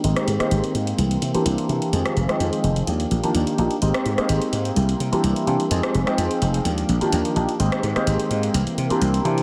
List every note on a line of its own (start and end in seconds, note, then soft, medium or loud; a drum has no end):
0.03 0.13 G#1 medium
0.03 0.75 D#3 medium
0.03 0.25 G#3 medium
0.03 0.75 G#3 loud
0.03 0.98 G#3 medium
0.03 0.25 A#3 medium
0.03 0.26 C4 medium
0.03 0.75 C4 medium
0.03 0.26 D#4 medium
0.03 0.26 G4 medium
0.03 0.73 G4 loud
0.03 0.98 G5 medium
0.03 1.91 C6 medium
0.03 closed hi-hat medium
0.16 cross-stick medium
0.16 closed hi-hat soft
0.27 0.36 G#2 medium
0.27 closed hi-hat medium
0.39 0.97 G#3 loud
0.39 0.97 A#3 medium
0.39 0.97 C4 medium
0.39 0.97 D#4 medium
0.39 0.97 G4 loud
0.39 muted slap bass stroke soft
0.39 cross-stick medium
0.39 closed hi-hat soft
0.51 0.60 G#1 medium
0.51 closed hi-hat medium
0.64 closed hi-hat soft
0.74 0.92 G#2 medium
0.74 0.98 G#3 soft
0.74 0.98 C4 soft
0.74 0.98 G4 medium
0.74 closed hi-hat medium
0.87 closed hi-hat soft
0.97 1.15 C2 medium
0.97 1.44 E3 medium
0.97 1.45 A#3 medium
0.97 1.46 C4 medium
0.97 1.47 G4 medium
0.97 1.92 A#4 medium
0.97 1.92 E5 medium
0.97 closed hi-hat medium
1.11 closed hi-hat soft
1.22 1.31 C3 medium
1.22 closed hi-hat medium
1.34 1.43 E3 medium
1.34 1.43 A#3 medium
1.34 1.43 C4 medium
1.34 1.43 D4 medium
1.34 1.43 G4 medium
1.34 muted slap bass stroke soft
1.34 closed hi-hat soft
1.45 1.54 C2 medium
1.45 1.92 E3 medium
1.45 1.66 E3 medium
1.45 1.66 A#3 medium
1.45 1.93 A#3 medium
1.45 1.67 C4 medium
1.45 1.93 C4 medium
1.45 1.67 D4 medium
1.45 1.67 G4 medium
1.45 1.94 G4 medium
1.45 closed hi-hat medium
1.58 closed hi-hat soft
1.69 1.78 C3 medium
1.69 1.90 E3 medium
1.69 1.90 A#3 medium
1.69 1.90 C4 medium
1.69 1.90 D4 medium
1.69 1.91 G4 medium
1.69 closed hi-hat soft
1.82 closed hi-hat soft
1.92 2.02 F2 medium
1.92 2.86 D#3 medium
1.92 2.14 F3 medium
1.92 2.14 G#3 medium
1.92 2.86 G#3 medium
1.92 2.64 G#3 medium
1.92 2.14 C4 medium
1.92 2.63 C4 medium
1.92 2.15 D#4 medium
1.92 2.15 G4 medium
1.92 2.62 G#4 loud
1.92 2.87 F5 medium
1.92 2.87 D#6 medium
1.92 closed hi-hat medium
2.06 cross-stick medium
2.06 closed hi-hat soft
2.17 2.25 F1 medium
2.17 closed hi-hat medium
2.28 2.86 F3 loud
2.28 2.86 G#3 medium
2.28 2.86 C4 medium
2.28 2.86 D#4 medium
2.28 2.87 G5 loud
2.28 muted slap bass stroke soft
2.28 cross-stick medium
2.28 closed hi-hat soft
2.40 2.49 F2 medium
2.40 closed hi-hat medium
2.53 closed hi-hat soft
2.63 2.81 F1 medium
2.63 2.87 G#3 soft
2.63 2.88 C4 medium
2.63 2.87 G#4 medium
2.63 closed hi-hat medium
2.76 closed hi-hat soft
2.87 3.04 D#2 medium
2.87 3.33 F3 medium
2.87 3.34 A#3 medium
2.87 3.35 D4 medium
2.87 3.81 G4 medium
2.87 3.36 G4 medium
2.87 3.81 F5 medium
2.87 3.81 D6 medium
2.87 closed hi-hat medium
3.00 closed hi-hat soft
3.11 3.20 A#1 medium
3.11 closed hi-hat medium
3.23 3.56 D#3 medium
3.23 3.56 F3 medium
3.23 3.56 A#3 medium
3.23 3.56 D4 medium
3.23 3.56 G4 medium
3.23 closed hi-hat soft
3.34 3.43 D#2 medium
3.34 3.82 F3 medium
3.34 3.81 A#3 medium
3.34 3.82 D4 medium
3.34 3.82 G4 medium
3.34 closed hi-hat medium
3.47 closed hi-hat soft
3.58 3.67 A#1 medium
3.58 3.72 F3 medium
3.58 3.72 A#3 medium
3.58 3.72 D4 medium
3.58 3.73 D#4 medium
3.58 3.73 G4 loud
3.58 closed hi-hat soft
3.71 closed hi-hat soft
3.82 3.91 G#1 medium
3.82 4.03 G#3 medium
3.82 4.76 G#3 medium
3.82 4.03 A#3 medium
3.82 4.76 C4 medium
3.82 4.04 C4 medium
3.82 4.04 D#4 medium
3.82 4.53 D#4 loud
3.82 4.04 G4 medium
3.82 4.51 G4 medium
3.82 4.76 G5 medium
3.82 5.69 C6 medium
3.82 closed hi-hat medium
3.94 cross-stick medium
3.94 closed hi-hat soft
4.06 4.14 G#2 medium
4.06 closed hi-hat medium
4.17 4.75 G#3 loud
4.17 4.75 A#3 medium
4.17 4.75 C4 medium
4.17 4.75 D#4 medium
4.17 4.75 G4 loud
4.17 muted slap bass stroke soft
4.17 cross-stick medium
4.17 closed hi-hat soft
4.29 4.38 G#1 medium
4.29 closed hi-hat medium
4.42 closed hi-hat soft
4.52 4.70 G#2 medium
4.52 4.77 D#4 soft
4.52 4.76 G4 medium
4.52 closed hi-hat medium
4.65 closed hi-hat soft
4.76 4.93 C2 medium
4.76 5.22 G3 medium
4.76 5.23 A#3 medium
4.76 5.24 E4 medium
4.76 5.24 G4 medium
4.76 5.70 A#4 medium
4.76 5.70 E5 medium
4.76 closed hi-hat medium
4.89 closed hi-hat soft
5.00 5.09 C3 medium
5.00 closed hi-hat medium
5.12 5.44 E3 medium
5.12 5.44 A#3 medium
5.12 5.45 C4 medium
5.12 5.45 D4 medium
5.12 5.45 G4 medium
5.12 muted slap bass stroke soft
5.12 closed hi-hat soft
5.23 5.32 C2 medium
5.23 5.71 G3 medium
5.23 5.70 A#3 medium
5.23 5.71 E4 medium
5.23 5.72 G4 medium
5.23 closed hi-hat medium
5.36 closed hi-hat soft
5.47 5.56 C3 medium
5.47 5.61 E3 medium
5.47 5.61 A#3 medium
5.47 5.61 C4 medium
5.47 5.61 D4 medium
5.47 5.61 G4 loud
5.47 closed hi-hat soft
5.60 closed hi-hat soft
5.70 5.80 F2 medium
5.70 5.92 F3 medium
5.70 5.92 G#3 medium
5.70 6.64 G#3 medium
5.70 6.42 C4 medium
5.70 5.92 C4 medium
5.70 5.92 D#4 medium
5.70 6.43 D#4 medium
5.70 5.93 G4 medium
5.70 6.40 G#4 medium
5.70 7.58 F5 medium
5.70 6.64 D#6 medium
5.70 closed hi-hat medium
5.83 cross-stick medium
5.83 closed hi-hat soft
5.95 6.03 F1 medium
5.95 closed hi-hat medium
6.06 6.63 F3 loud
6.06 6.64 G#3 medium
6.06 6.64 C4 medium
6.06 6.64 D#4 medium
6.06 6.64 G5 loud
6.06 cross-stick medium
6.06 closed hi-hat soft
6.18 6.27 F2 medium
6.18 closed hi-hat medium
6.31 closed hi-hat soft
6.41 6.59 F1 medium
6.41 6.66 D#4 soft
6.41 6.65 G#4 medium
6.41 closed hi-hat medium
6.54 closed hi-hat soft
6.64 6.82 D#2 medium
6.64 7.10 F3 medium
6.64 7.11 A#3 medium
6.64 7.12 D4 medium
6.64 7.59 G4 medium
6.64 7.14 G4 medium
6.64 7.59 D6 medium
6.64 closed hi-hat medium
6.78 closed hi-hat soft
6.89 6.98 A#1 medium
6.89 closed hi-hat medium
7.01 7.34 D#3 medium
7.01 7.33 F3 medium
7.01 7.33 A#3 medium
7.01 7.33 D4 medium
7.01 7.34 G4 medium
7.01 muted slap bass stroke soft
7.01 closed hi-hat soft
7.12 7.21 D#2 medium
7.12 7.59 F3 medium
7.12 7.59 A#3 medium
7.12 7.60 D4 medium
7.12 7.60 G4 medium
7.12 closed hi-hat medium
7.25 closed hi-hat soft
7.36 7.45 A#1 loud
7.36 7.50 F3 medium
7.36 7.50 A#3 medium
7.36 7.50 D4 medium
7.36 7.50 D#4 medium
7.36 7.50 G4 loud
7.36 closed hi-hat soft
7.49 closed hi-hat soft
7.59 7.68 G#1 medium
7.59 8.30 D#3 medium
7.59 7.81 G#3 medium
7.59 8.31 G#3 medium
7.59 8.53 G#3 medium
7.59 7.81 A#3 medium
7.59 7.81 C4 medium
7.59 8.31 C4 medium
7.59 7.81 D#4 medium
7.59 7.81 G4 medium
7.59 8.29 G4 loud
7.59 8.53 G5 medium
7.59 9.43 C6 loud
7.59 closed hi-hat medium
7.72 cross-stick medium
7.72 closed hi-hat soft
7.83 7.92 G#2 medium
7.83 closed hi-hat medium
7.95 8.52 G#3 loud
7.95 8.53 A#3 medium
7.95 8.53 C4 medium
7.95 8.53 D#4 medium
7.95 8.53 G4 loud
7.95 muted slap bass stroke soft
7.95 cross-stick medium
7.95 closed hi-hat soft
8.07 8.16 G#1 medium
8.07 closed hi-hat medium
8.20 closed hi-hat soft
8.30 8.48 G#2 medium
8.30 8.54 G#3 soft
8.30 8.54 C4 soft
8.30 8.54 G4 medium
8.30 closed hi-hat medium
8.43 closed hi-hat soft
8.53 8.63 C2 medium
8.53 8.99 E3 medium
8.53 9.00 A#3 medium
8.53 9.01 C4 medium
8.53 9.02 G4 medium
8.53 9.43 A#4 medium
8.53 9.43 E5 medium
8.53 closed hi-hat medium
8.67 closed hi-hat soft
8.78 8.87 C3 medium
8.78 closed hi-hat medium
8.90 9.22 E3 medium
8.90 9.22 A#3 medium
8.90 9.23 C4 medium
8.90 9.23 D4 medium
8.90 9.23 G4 medium
8.90 muted slap bass stroke soft
8.90 closed hi-hat soft
9.01 9.18 C2 medium
9.01 9.43 E3 medium
9.01 9.43 A#3 medium
9.01 9.43 C4 medium
9.01 9.43 G4 medium
9.01 closed hi-hat medium
9.14 closed hi-hat soft
9.25 9.42 C3 medium
9.25 9.39 E3 medium
9.25 9.39 A#3 medium
9.25 9.39 C4 medium
9.25 9.39 D4 medium
9.25 9.39 G4 loud
9.25 closed hi-hat soft
9.38 closed hi-hat soft